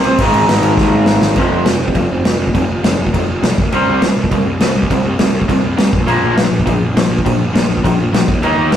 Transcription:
0.00 2.40 C4 loud
0.00 crash medium
0.05 0.18 C2 loud
0.18 0.32 G#1 loud
0.18 1.36 G#2 medium
0.18 1.37 D#3 loud
0.18 1.37 G#3 loud
0.18 kick loud
0.18 crash loud
0.33 0.47 G#1 medium
0.33 crash medium
0.47 0.61 G#1 loud
0.47 snare loud
0.47 crash medium
0.62 0.76 G#1 medium
0.62 crash medium
0.77 0.90 D#2 loud
0.77 kick loud
0.77 snare medium
0.91 1.05 G#2 medium
1.05 1.20 G#1 medium
1.05 snare loud
1.21 1.35 G#1 medium
1.21 snare loud
1.36 1.46 F1 medium
1.36 1.65 F2 medium
1.36 1.65 C3 medium
1.36 1.65 F3 medium
1.36 kick loud
1.36 crash medium
1.51 1.61 F1 medium
1.66 1.75 F1 medium
1.66 1.79 F2 medium
1.66 1.80 C3 medium
1.66 snare loud
1.66 crash medium
1.80 1.90 F1 medium
1.88 kick medium
1.95 2.05 F1 medium
1.95 2.08 F2 medium
1.95 2.08 C3 medium
1.95 kick loud
1.95 crash medium
2.10 2.20 F1 medium
2.24 2.34 F1 medium
2.24 2.38 F2 medium
2.24 2.39 C3 medium
2.24 snare loud
2.24 crash medium
2.39 2.49 F1 medium
2.47 kick medium
2.55 2.64 F1 medium
2.55 2.68 F2 medium
2.55 2.68 C3 medium
2.55 kick loud
2.55 crash medium
2.69 2.79 F1 medium
2.84 2.93 F1 loud
2.84 2.97 F2 medium
2.84 2.97 C3 medium
2.84 snare loud
2.84 crash medium
2.99 3.09 F1 medium
3.06 kick medium
3.14 3.23 F1 medium
3.14 3.27 F2 medium
3.14 3.27 C3 medium
3.14 kick loud
3.14 crash medium
3.28 3.38 F1 medium
3.43 3.52 B1 medium
3.43 3.56 F2 medium
3.43 3.56 C3 medium
3.43 snare loud
3.43 crash medium
3.58 3.67 C2 medium
3.58 kick loud
3.72 3.82 C2 loud
3.72 4.01 C3 medium
3.72 4.01 G3 loud
3.72 4.01 C4 loud
3.72 crash medium
3.87 3.97 C2 medium
4.02 4.12 C2 loud
4.02 4.16 C3 medium
4.02 4.16 G3 medium
4.02 snare loud
4.02 crash medium
4.17 4.26 C2 medium
4.24 kick medium
4.31 4.41 C2 medium
4.31 4.45 C3 medium
4.31 4.45 G3 medium
4.31 kick loud
4.31 crash medium
4.46 4.56 C2 medium
4.60 4.70 C2 medium
4.60 4.74 C3 medium
4.60 4.75 G3 medium
4.60 snare loud
4.60 crash medium
4.75 4.85 C2 medium
4.83 kick medium
4.90 5.00 C2 loud
4.90 5.04 C3 medium
4.90 5.04 G3 medium
4.90 kick medium
4.90 crash medium
5.04 5.14 C2 medium
5.19 5.29 C2 medium
5.19 5.33 C3 medium
5.19 5.33 G3 medium
5.19 snare loud
5.19 crash medium
5.33 5.43 C2 medium
5.42 kick medium
5.48 5.58 C2 medium
5.48 5.62 C3 medium
5.48 5.62 G3 medium
5.48 kick medium
5.48 crash medium
5.64 5.73 C2 medium
5.77 5.88 C2 medium
5.77 5.91 C3 medium
5.77 5.91 G3 medium
5.77 snare loud
5.77 crash medium
5.93 6.03 A#1 medium
5.93 kick loud
6.07 6.17 A#1 medium
6.07 6.36 A#2 medium
6.07 6.36 F3 loud
6.07 6.36 A#3 medium
6.07 crash medium
6.23 6.32 A#1 medium
6.37 6.47 A#1 loud
6.37 6.50 A#2 medium
6.37 6.50 F3 medium
6.37 snare loud
6.37 crash medium
6.51 6.61 A#1 medium
6.60 kick medium
6.66 6.76 A#1 medium
6.66 6.80 A#2 medium
6.66 6.80 F3 medium
6.66 kick loud
6.66 crash medium
6.81 6.90 A#1 medium
6.95 7.05 A#1 medium
6.95 7.10 A#2 medium
6.95 7.10 F3 medium
6.95 snare loud
6.95 crash medium
7.09 7.19 A#1 loud
7.19 kick medium
7.25 7.35 A#1 loud
7.25 7.39 A#2 medium
7.25 7.39 F3 medium
7.25 kick loud
7.25 crash medium
7.39 7.49 A#1 medium
7.54 7.64 A#1 loud
7.54 7.67 A#2 medium
7.54 7.68 F3 medium
7.54 snare loud
7.54 crash medium
7.69 7.79 A#1 medium
7.77 kick medium
7.84 7.94 A#1 loud
7.84 7.97 A#2 medium
7.84 7.98 F3 medium
7.84 kick loud
7.84 crash medium
7.98 8.08 A#1 medium
8.12 8.22 A#1 loud
8.12 8.27 A#2 medium
8.12 8.27 F3 medium
8.12 snare loud
8.12 crash medium
8.28 8.38 D#2 medium
8.28 kick loud
8.42 8.52 D#2 loud
8.42 8.71 D#3 medium
8.42 8.72 A#3 medium
8.42 8.72 D#4 loud
8.42 crash medium
8.57 8.67 D#2 medium
8.72 8.77 D#2 loud
8.72 8.77 D#3 medium
8.72 8.77 A#3 medium
8.72 snare loud
8.72 crash medium

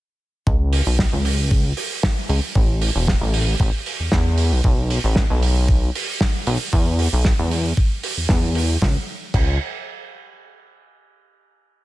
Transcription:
0.47 0.82 C#2 medium
0.47 kick loud
0.73 open hi-hat loud
0.87 1.06 B1 medium
0.99 kick loud
0.99 snare loud
1.13 1.73 C#2 medium
1.25 open hi-hat loud
1.51 kick loud
1.77 open hi-hat loud
2.03 kick loud
2.03 snare loud
2.29 2.40 C#2 medium
2.29 open hi-hat loud
2.55 2.90 A1 medium
2.55 kick loud
2.82 open hi-hat loud
2.95 3.15 E1 medium
3.08 kick loud
3.08 snare loud
3.21 3.55 A1 medium
3.34 open hi-hat loud
3.60 3.71 A1 medium
3.60 kick loud
3.86 open hi-hat loud
4.00 4.10 E2 soft
4.12 4.53 E2 medium
4.12 kick loud
4.12 snare loud
4.38 open hi-hat loud
4.52 4.61 B1 medium
4.64 4.99 B1 medium
4.64 kick loud
4.90 open hi-hat loud
5.04 5.24 A1 medium
5.16 kick loud
5.16 snare loud
5.30 5.90 B1 medium
5.43 open hi-hat loud
5.69 kick loud
5.95 open hi-hat loud
6.21 kick loud
6.21 snare loud
6.47 6.58 B1 medium
6.47 open hi-hat loud
6.73 7.08 E2 medium
6.73 kick loud
6.99 open hi-hat loud
7.13 7.33 B1 medium
7.25 kick loud
7.25 snare loud
7.39 7.73 E2 medium
7.51 open hi-hat loud
7.77 kick loud
8.03 open hi-hat loud
8.17 8.27 E2 soft
8.29 8.77 E2 medium
8.29 kick loud
8.29 snare loud
8.55 open hi-hat loud
8.82 8.97 C#2 loud
8.82 kick loud
8.82 snare medium
9.34 9.58 C#2 loud
9.34 kick loud
9.34 crash medium

